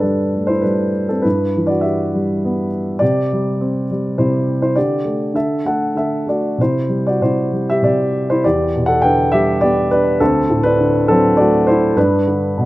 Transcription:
Already playing: G2 D3 D4 B4
0.00 G3 D4 A4
0.35 A3
0.47 E4 C5
0.62 G3 D4 B4
1.09 C4 A4
1.22 G2 E4 B4
1.57 E3
1.67 F#4 D5
1.81 G4 E5
2.15 G3
2.45 B3
2.99 C3 G4 D5
3.33 G3
3.61 C4
3.91 G3
4.18 C3 E4 C5
4.61 E4 C5
4.76 D3 G4 D5
5.05 A3
5.34 D3 A4 E5
5.65 A3 A4 F#5
5.95 D3 A4 E5
6.27 A3 F#4 D5
6.58 C3 E4 C5
6.89 G3
7.07 F#4 D5
7.22 C3 E4 C5
7.52 G3
7.70 G4 E5
7.82 C3 G4 D5
8.30 E4 C5
8.44 E2 G4 D5
8.75 B2
8.86 A4 F#5
9.02 D3 B4 G5
9.32 G3 G4 E5
9.61 B3 G4 D5
9.91 D4 B4
10.20 D2 C4 A4
10.50 A2
10.63 D4 B4
10.80 D3
11.08 F#3 C4 A4
11.37 A3 F#4 D5
11.67 E4 C5
11.96 G2 D4 B4
12.27 D3
12.58 B2

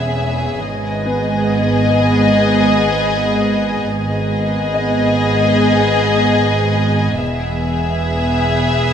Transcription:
Already playing: E1 E2 B3 C#4 G#4 B4 C#5 E5 G#5
0.63 G#1 G#2 B3 G#4 B4 D#5 G#5
1.05 B3 B4
3.92 G#1 G#2 B3 G#4 B4 D#5 G#5
4.74 D#5
7.20 E1 E2 B3 G#4 B4 E5 G#5

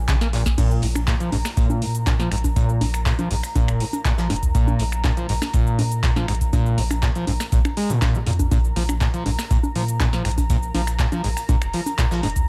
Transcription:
Already playing: A#1 F4 C#5 G#5
0.08 C#3, kick, snare, clap, closed hi-hat, cabasa
0.21 A#3, snare, closed hi-hat, cabasa
0.33 A#2, snare, closed hi-hat, open hi-hat
0.46 kick, snare, cabasa
0.58 A#1 A#2 A#5, kick, closed hi-hat, crash, high conga, cabasa
0.71 cabasa
0.82 A#1 G#2, snare, closed hi-hat, open hi-hat
0.96 finger snap, closed hi-hat, high conga, cabasa
1.07 A#2, kick, snare, clap, closed hi-hat, cabasa
1.20 F3, closed hi-hat, cabasa
1.32 A#1 G#2, closed hi-hat, open hi-hat, high conga
1.45 finger snap, snare, cabasa
1.57 A#2, kick, closed hi-hat, cabasa
1.70 high conga, cabasa
1.82 G#2 A#2, closed hi-hat, open hi-hat
1.95 closed hi-hat, cabasa
2.06 A#2, kick, snare, clap, closed hi-hat, high conga, cabasa
2.20 F3, snare, cabasa
2.32 A#1 G#2, finger snap, closed hi-hat, open hi-hat
2.38 closed hi-hat
2.44 kick, closed hi-hat, high conga, cabasa
2.56 A#2, kick, closed hi-hat, cabasa
2.69 cabasa
2.81 A#1 G#2, snare, closed hi-hat, open hi-hat, high conga
2.94 finger snap, closed hi-hat, cabasa
3.06 A#2, kick, snare, clap, closed hi-hat, cabasa
3.19 F3, closed hi-hat, high conga, cabasa
3.31 A#1 G#2, closed hi-hat, open hi-hat
3.43 finger snap, closed hi-hat, cabasa
3.56 A#2, kick, closed hi-hat, high conga, cabasa
3.68 F1, finger snap, cabasa
3.80 G#2, closed hi-hat, open hi-hat
3.93 closed hi-hat, high conga, cabasa
4.05 A#2, kick, snare, clap, closed hi-hat, cabasa
4.18 A#1 F3, snare, closed hi-hat, cabasa
4.30 F1 G#2, snare, closed hi-hat, open hi-hat, high conga
4.36 closed hi-hat
4.43 D#2, kick, closed hi-hat, cabasa
4.55 A#1 A#2, kick, closed hi-hat, cabasa
4.68 high conga, cabasa
4.79 A#1 G#2, snare, closed hi-hat, open hi-hat
4.92 finger snap, closed hi-hat, cabasa
5.04 A#2, kick, snare, clap, closed hi-hat, high conga, cabasa
5.17 F3, closed hi-hat, cabasa
5.29 A#1 G#2, closed hi-hat, open hi-hat
5.42 finger snap, snare, high conga, cabasa
5.53 A#2, kick, closed hi-hat, cabasa
5.67 cabasa
5.79 G#2 A#2, closed hi-hat, open hi-hat, high conga
5.92 closed hi-hat, cabasa
6.03 A#2, kick, snare, clap, closed hi-hat, cabasa
6.16 F3, snare, high conga, cabasa
6.28 A#1 G#2, finger snap, closed hi-hat, open hi-hat
6.35 closed hi-hat
6.41 kick, closed hi-hat, cabasa
6.53 A#2, kick, closed hi-hat, high conga, cabasa
6.66 cabasa
6.78 A#1 G#2, snare, closed hi-hat, open hi-hat
6.91 finger snap, closed hi-hat, high conga, cabasa
7.03 A#2, kick, snare, clap, closed hi-hat, cabasa
7.15 F3, closed hi-hat, cabasa
7.27 A#1 G#2, closed hi-hat, open hi-hat, high conga
7.40 finger snap, snare, closed hi-hat, cabasa
7.52 A#1 A#2, kick, closed hi-hat, cabasa
7.65 finger snap, high conga, cabasa
7.77 G#3, closed hi-hat, open hi-hat
7.90 A#2, closed hi-hat, cabasa
8.02 A#2, kick, snare, clap, closed hi-hat, high conga, cabasa
8.15 A#3, cabasa
8.27 F2 A#2, snare, closed hi-hat, open hi-hat
8.33 closed hi-hat
8.39 kick, closed hi-hat, high conga, cabasa
8.51 A#1 A#2 A#5, kick, closed hi-hat, high conga, cabasa
8.64 cabasa
8.76 A#1 F3, snare, closed hi-hat, open hi-hat
8.89 finger snap, high conga, cabasa
9.01 A#2, kick, snare, clap, closed hi-hat, cabasa
9.14 F3, closed hi-hat, cabasa
9.26 A#1 G#2, closed hi-hat, open hi-hat, high conga
9.39 finger snap, snare, cabasa
9.51 A#2, kick, closed hi-hat, cabasa
9.63 high conga, cabasa
9.75 A#2 F3, closed hi-hat, open hi-hat
9.88 closed hi-hat, cabasa
10.00 A#2, kick, snare, clap, closed hi-hat, high conga, cabasa
10.13 F3, snare, cabasa
10.25 A#1 G#2, finger snap, closed hi-hat, open hi-hat
10.31 closed hi-hat
10.38 kick, closed hi-hat, high conga, cabasa
10.50 A#2, kick, closed hi-hat, cabasa
10.63 cabasa
10.75 A#1 F3, snare, closed hi-hat, open hi-hat, high conga
10.87 finger snap, closed hi-hat, cabasa
10.99 A#2, kick, snare, clap, closed hi-hat, cabasa
11.12 F3, closed hi-hat, high conga, cabasa
11.24 A#1 G#2, closed hi-hat, open hi-hat
11.37 finger snap, closed hi-hat, cabasa
11.49 A#2, kick, closed hi-hat, high conga, cabasa
11.62 F1, finger snap, cabasa
11.73 F3, closed hi-hat, open hi-hat
11.86 closed hi-hat, high conga, cabasa
11.98 A#2, kick, snare, clap, closed hi-hat, cabasa
12.11 A#1 F3, snare, closed hi-hat, cabasa
12.23 F1 G#2, snare, closed hi-hat, open hi-hat, high conga
12.30 closed hi-hat
12.36 D#2, kick, closed hi-hat, cabasa

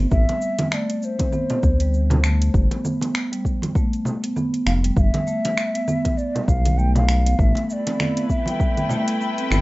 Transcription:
0.00 B3
0.11 A1 E5, kick, shaker
0.29 G3, closed hi-hat, muted conga
0.42 shaker
0.59 closed hi-hat, muted conga, low conga, shaker
0.70 A3 D5 E5, finger snap, shaker
0.90 closed hi-hat, shaker
1.00 D5, shaker
1.04 C5
1.19 C4, kick, closed hi-hat, high conga, shaker
1.32 B3, low conga, shaker
1.50 B3, closed hi-hat, low conga, shaker
1.63 D2, kick, shaker
1.80 G3, closed hi-hat, shaker
1.94 shaker
2.10 closed hi-hat, low conga, shaker
2.24 A3, finger snap, shaker
2.42 closed hi-hat, shaker
2.54 G1, kick, shaker
2.71 B3, closed hi-hat, muted conga
2.84 B3, low conga, shaker
3.01 B3, closed hi-hat, muted conga, shaker
3.15 finger snap, shaker
3.32 G3, closed hi-hat, shaker
3.45 kick, shaker
3.62 closed hi-hat, high conga, low conga, shaker
3.75 A3, kick, shaker
3.93 closed hi-hat, shaker
4.05 low conga, shaker
4.23 B3, closed hi-hat, shaker
4.36 B3, low conga, shaker
4.53 B3, closed hi-hat, shaker
4.66 F1 F5, finger snap, muted conga, shaker
4.84 G3, closed hi-hat, shaker
4.96 G1 F5, kick, shaker
5.01 E5
5.14 closed hi-hat, muted conga, low conga
5.27 A3, shaker
5.45 closed hi-hat, muted conga, shaker
5.58 finger snap, shaker
5.75 B3, closed hi-hat, shaker
5.88 B3, low conga, shaker
6.05 B3, kick, closed hi-hat, high conga, shaker
6.17 D5, shaker
6.35 G3, closed hi-hat, low conga, shaker
6.48 B1 F5, kick, shaker
6.65 closed hi-hat, low conga, shaker
6.78 A3 G5, shaker
6.95 F5, closed hi-hat, low conga, shaker
7.09 finger snap, shaker
7.26 B3, closed hi-hat, shaker
7.39 A1 A3 E5 B5, kick, shaker
7.55 closed hi-hat, muted conga
7.70 D5 E5, shaker
7.80 E4
7.87 C4, closed hi-hat, muted conga, shaker
8.00 B3, finger snap, low conga, shaker
8.16 B3 B4, closed hi-hat, shaker
8.30 E5, kick, shaker
8.39 G5
8.46 G3, closed hi-hat, high conga, shaker
8.60 kick, shaker
8.77 closed hi-hat, low conga, shaker
8.89 A3, low conga, shaker
9.08 closed hi-hat, shaker
9.21 shaker
9.38 C4, closed hi-hat, shaker
9.50 G1 B3, finger snap, muted conga, low conga, shaker

